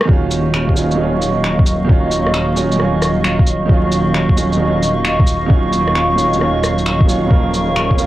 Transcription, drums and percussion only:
0.01 cross-stick medium
0.09 kick loud
0.31 shaker medium
0.54 finger snap loud
0.69 kick medium
0.76 shaker medium
0.91 shaker soft
1.22 shaker medium
1.44 finger snap loud
1.59 kick loud
1.66 shaker medium
1.89 kick loud
2.11 shaker medium
2.27 cross-stick soft
2.34 finger snap loud
2.57 shaker medium
2.72 shaker soft
2.80 cross-stick soft
3.02 cross-stick medium
3.02 shaker medium
3.24 finger snap loud
3.39 kick loud
3.47 shaker medium
3.69 kick loud
3.92 shaker medium
4.14 finger snap loud
4.29 kick medium
4.37 shaker medium
4.53 shaker soft
4.83 shaker medium
5.05 finger snap loud
5.20 kick loud
5.27 shaker medium
5.50 kick loud
5.73 shaker medium
5.88 cross-stick soft
5.95 finger snap loud
6.18 shaker medium
6.33 shaker soft
6.41 cross-stick soft
6.63 cross-stick medium
6.63 shaker medium
6.78 shaker soft
6.86 finger snap loud
7.00 kick loud
7.09 shaker medium
7.31 kick loud
7.54 shaker medium
7.76 finger snap loud
7.91 kick medium
7.98 shaker medium

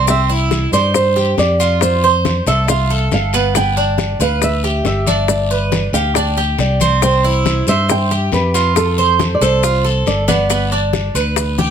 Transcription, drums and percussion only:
0.08 high bongo medium
0.08 high conga soft
0.08 long guiro medium
0.08 maracas medium
0.30 high conga soft
0.30 maracas soft
0.51 high bongo medium
0.51 high conga medium
0.51 short guiro medium
0.51 maracas soft
0.73 high bongo soft
0.73 high conga soft
0.73 short guiro medium
0.73 maracas medium
0.94 high bongo medium
0.94 high conga soft
0.94 long guiro medium
0.94 maracas medium
1.16 high bongo soft
1.16 high conga soft
1.16 maracas soft
1.38 high bongo soft
1.38 low bongo medium
1.38 high conga soft
1.38 short guiro medium
1.38 maracas soft
1.59 high bongo soft
1.59 short guiro medium
1.59 maracas medium
1.81 high bongo medium
1.81 high conga soft
1.81 long guiro medium
1.81 maracas medium
2.04 high conga soft
2.04 maracas soft
2.25 high bongo medium
2.25 high conga medium
2.25 short guiro medium
2.25 maracas soft
2.46 high bongo soft
2.46 high conga soft
2.46 short guiro medium
2.46 maracas medium
2.68 high bongo medium
2.68 high conga soft
2.68 long guiro medium
2.68 maracas medium
2.90 high bongo soft
2.90 high conga soft
2.90 maracas soft
3.11 high bongo soft
3.11 low bongo medium
3.11 high conga soft
3.11 short guiro medium
3.11 maracas soft
3.33 high bongo soft
3.33 short guiro medium
3.33 maracas medium
3.54 high bongo medium
3.54 high conga soft
3.54 long guiro medium
3.54 maracas medium
3.76 high conga soft
3.76 maracas soft
3.98 high bongo medium
3.98 high conga medium
3.98 short guiro medium
3.98 maracas soft
4.19 high bongo soft
4.19 high conga soft
4.19 short guiro medium
4.19 maracas medium
4.41 high bongo medium
4.41 high conga soft
4.41 long guiro medium
4.41 maracas medium
4.63 high bongo soft
4.63 high conga soft
4.63 maracas soft
4.85 high bongo soft
4.85 low bongo medium
4.85 high conga soft
4.85 short guiro medium
4.85 maracas soft
5.06 high bongo soft
5.06 high conga medium
5.06 short guiro medium
5.06 maracas medium
5.28 high bongo medium
5.28 high conga soft
5.28 long guiro medium
5.28 maracas medium
5.51 high conga soft
5.51 maracas soft
5.72 high bongo medium
5.72 high conga medium
5.72 short guiro medium
5.72 maracas soft
5.93 high bongo soft
5.93 high conga soft
5.93 short guiro medium
5.93 maracas medium
6.15 high bongo medium
6.15 high conga soft
6.15 long guiro medium
6.15 maracas medium
6.37 high bongo soft
6.37 high conga soft
6.37 maracas soft
6.58 high bongo soft
6.58 low bongo medium
6.58 high conga soft
6.58 short guiro medium
6.58 maracas soft
6.80 high bongo soft
6.80 high conga medium
6.80 short guiro medium
6.80 maracas medium
7.02 high bongo medium
7.02 high conga soft
7.02 long guiro medium
7.02 maracas medium
7.24 high conga soft
7.24 maracas soft
7.45 high bongo medium
7.45 high conga medium
7.45 short guiro medium
7.45 maracas soft
7.67 high bongo soft
7.67 high conga soft
7.67 short guiro medium
7.67 maracas medium
7.88 high bongo medium
7.88 high conga soft
7.88 long guiro medium
7.88 maracas medium
8.11 high bongo soft
8.11 high conga soft
8.11 maracas soft
8.32 high bongo soft
8.32 low bongo medium
8.32 high conga soft
8.32 short guiro medium
8.32 maracas soft
8.54 high bongo soft
8.54 short guiro medium
8.54 maracas medium
8.76 high bongo medium
8.76 high conga soft
8.76 long guiro medium
8.76 maracas medium
8.98 high conga soft
8.98 maracas soft
9.19 high bongo medium
9.19 high conga medium
9.19 short guiro medium
9.19 maracas soft
9.41 high bongo soft
9.41 high conga soft
9.41 short guiro medium
9.41 maracas medium
9.63 high bongo medium
9.63 high conga soft
9.63 long guiro medium
9.63 maracas medium
9.85 high bongo soft
9.85 high conga soft
9.85 maracas soft
10.06 high bongo soft
10.06 low bongo medium
10.06 high conga soft
10.06 short guiro medium
10.06 maracas soft
10.28 high bongo soft
10.28 high conga medium
10.28 short guiro medium
10.28 maracas medium
10.50 high bongo medium
10.50 high conga soft
10.50 long guiro medium
10.50 maracas medium
10.72 high conga soft
10.72 maracas soft
10.93 high bongo medium
10.93 high conga medium
10.93 short guiro medium
10.93 maracas soft
11.15 high bongo soft
11.15 high conga soft
11.15 short guiro medium
11.15 maracas medium
11.36 high bongo medium
11.36 high conga soft
11.36 long guiro medium
11.36 maracas medium
11.58 high bongo soft
11.58 high conga medium
11.58 maracas soft

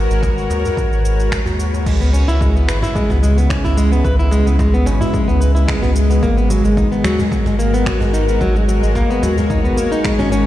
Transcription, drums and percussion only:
0.11 djembe tone soft
0.11 cabasa soft
0.23 kick medium
0.23 djembe slap medium
0.23 cabasa soft
0.38 cabasa soft
0.50 djembe slap medium
0.50 djembe tone medium
0.50 cabasa medium
0.65 djembe bass medium
0.65 cabasa soft
0.77 kick loud
0.77 cabasa soft
0.93 cabasa soft
1.05 cabasa medium
1.20 cabasa soft
1.32 finger snap medium
1.32 kick medium
1.32 cabasa soft
1.46 djembe bass medium
1.46 cabasa soft
1.60 cabasa medium
1.74 djembe tone medium
1.74 cabasa soft
1.86 kick loud
1.86 crash medium
1.86 cabasa soft
2.02 cabasa soft
2.14 cabasa medium
2.29 cabasa soft
2.41 kick loud
2.41 cabasa soft
2.56 cabasa soft
2.68 finger snap medium
2.68 djembe tone medium
2.68 cabasa medium
2.82 djembe bass medium
2.82 cabasa soft
2.95 kick loud
2.95 cabasa soft
3.10 djembe slap soft
3.10 djembe tone medium
3.10 djembe bass medium
3.10 cabasa soft
3.23 cabasa medium
3.38 cabasa soft
3.50 finger snap medium
3.50 kick loud
3.50 cabasa soft
3.64 djembe tone medium
3.64 djembe bass medium
3.64 cabasa soft
3.78 cabasa medium
3.93 cabasa soft
4.05 kick loud
4.05 cabasa soft
4.20 cabasa soft
4.31 djembe slap soft
4.31 cabasa medium
4.47 cabasa soft
4.59 kick loud
4.59 djembe slap medium
4.59 cabasa soft
4.74 cabasa soft
4.86 djembe slap medium
4.86 djembe tone medium
4.86 cabasa medium
5.01 djembe bass medium
5.01 cabasa soft
5.14 kick loud
5.14 cabasa medium
5.29 cabasa soft
5.41 cabasa medium
5.56 cabasa soft
5.68 finger snap medium
5.68 kick loud
5.68 cabasa soft
5.83 djembe bass medium
5.83 cabasa soft
5.96 cabasa medium
6.11 djembe tone medium
6.11 cabasa soft
6.23 kick loud
6.23 cabasa soft
6.38 cabasa soft
6.50 cabasa medium
6.65 cabasa soft
6.77 kick loud
6.77 cabasa soft
6.92 cabasa soft
7.04 finger snap medium
7.04 djembe tone medium
7.04 cabasa medium
7.19 djembe bass medium
7.19 cabasa soft
7.32 kick loud
7.32 cabasa soft
7.46 djembe slap soft
7.46 djembe tone medium
7.46 djembe bass medium
7.46 cabasa soft
7.60 cabasa medium
7.74 cabasa soft
7.86 finger snap medium
7.86 kick loud
7.86 cabasa soft
8.01 djembe tone medium
8.01 djembe bass medium
8.01 cabasa soft
8.14 cabasa medium
8.29 cabasa soft
8.41 kick loud
8.41 cabasa soft
8.56 cabasa soft
8.69 djembe slap soft
8.69 cabasa medium
8.83 cabasa soft
8.95 kick loud
8.95 djembe slap medium
8.95 cabasa soft
9.11 cabasa soft
9.23 djembe slap soft
9.23 djembe tone medium
9.23 cabasa medium
9.38 djembe bass medium
9.38 cabasa soft
9.50 kick loud
9.50 cabasa soft
9.65 cabasa soft
9.78 cabasa medium
9.92 cabasa soft
10.04 finger snap medium
10.04 kick loud
10.04 cabasa soft
10.19 djembe bass medium
10.19 cabasa soft
10.32 cabasa medium

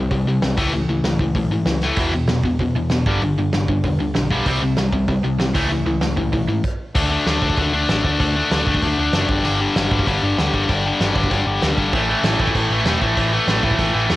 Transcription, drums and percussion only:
0.11 kick medium
0.11 open hi-hat medium
0.42 snare loud
0.42 open hi-hat medium
0.58 kick loud
0.58 crash medium
1.04 snare loud
1.04 open hi-hat medium
1.19 kick medium
1.34 kick medium
1.34 open hi-hat medium
1.66 snare loud
1.66 open hi-hat medium
1.81 snare medium
1.96 kick loud
1.96 crash loud
2.28 snare loud
2.28 open hi-hat medium
2.43 kick medium
2.59 kick medium
2.59 open hi-hat medium
2.90 snare loud
2.90 open hi-hat soft
3.06 kick loud
3.21 open hi-hat medium
3.53 snare loud
3.53 open hi-hat medium
3.68 kick medium
3.84 kick medium
3.84 open hi-hat medium
4.14 snare loud
4.14 open hi-hat medium
4.30 kick medium
4.46 kick loud
4.46 crash loud
4.77 snare loud
4.77 open hi-hat medium
4.93 kick medium
5.08 kick loud
5.08 open hi-hat medium
5.40 snare loud
5.40 open hi-hat medium
5.55 kick loud
5.55 crash medium
6.01 snare loud
6.01 open hi-hat medium
6.17 kick medium
6.33 kick medium
6.33 open hi-hat medium
6.64 kick loud
6.64 crash medium
6.95 kick loud
6.95 crash loud
6.95 crash medium
7.26 snare loud
7.26 crash medium
7.42 kick medium
7.50 kick medium
7.57 kick loud
7.57 crash medium
7.89 snare loud
7.89 crash medium
8.04 kick medium
8.20 kick loud
8.20 crash medium
8.51 snare loud
8.51 crash medium
8.67 kick medium
8.75 kick medium
8.82 kick medium
8.82 crash medium
9.13 snare loud
9.13 crash medium
9.29 kick loud
9.44 crash medium
9.76 snare loud
9.76 crash medium
9.91 kick medium
9.99 kick medium
10.07 kick loud
10.07 crash medium
10.38 snare loud
10.38 crash medium
10.54 kick medium
10.69 kick loud
10.69 crash medium
11.01 snare loud
11.01 crash medium
11.16 kick medium
11.24 kick medium
11.31 kick medium
11.31 crash medium
11.62 snare loud
11.62 crash medium
11.78 kick medium
11.93 kick loud
11.93 crash medium
12.24 snare loud
12.24 crash medium
12.39 kick medium
12.47 kick medium
12.55 kick medium
12.55 crash medium
12.85 snare loud
12.85 crash medium
13.02 kick medium
13.17 kick loud
13.17 crash medium
13.48 snare loud
13.48 crash medium
13.63 kick medium
13.71 kick loud
13.79 kick medium
13.79 crash medium
14.10 snare loud
14.10 crash medium

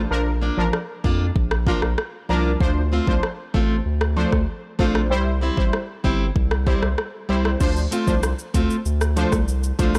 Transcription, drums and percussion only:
0.73 cross-stick loud
1.04 kick medium
1.36 kick loud
1.51 cross-stick loud
1.67 kick loud
1.82 cross-stick medium
1.98 cross-stick medium
2.60 kick loud
3.07 kick loud
3.23 cross-stick loud
3.54 kick medium
4.01 cross-stick loud
4.32 kick loud
4.32 cross-stick medium
4.79 kick loud
4.95 cross-stick loud
5.57 kick loud
5.73 cross-stick loud
6.04 kick medium
6.36 kick loud
6.51 cross-stick loud
6.67 kick loud
6.83 cross-stick medium
6.98 cross-stick medium
7.45 cross-stick loud
7.61 kick loud
7.61 crash medium
7.61 shaker medium
7.76 shaker medium
7.92 closed hi-hat medium
7.92 shaker medium
8.07 kick loud
8.07 shaker medium
8.23 cross-stick loud
8.23 shaker medium
8.39 shaker medium
8.54 kick medium
8.54 closed hi-hat medium
8.54 shaker medium
8.70 shaker medium
8.86 shaker medium
9.01 cross-stick medium
9.01 shaker medium
9.17 closed hi-hat medium
9.17 shaker soft
9.32 kick loud
9.32 cross-stick medium
9.32 shaker medium
9.48 shaker medium
9.63 shaker medium
9.79 kick loud
9.79 closed hi-hat medium
9.79 shaker medium
9.95 cross-stick loud
9.95 shaker medium

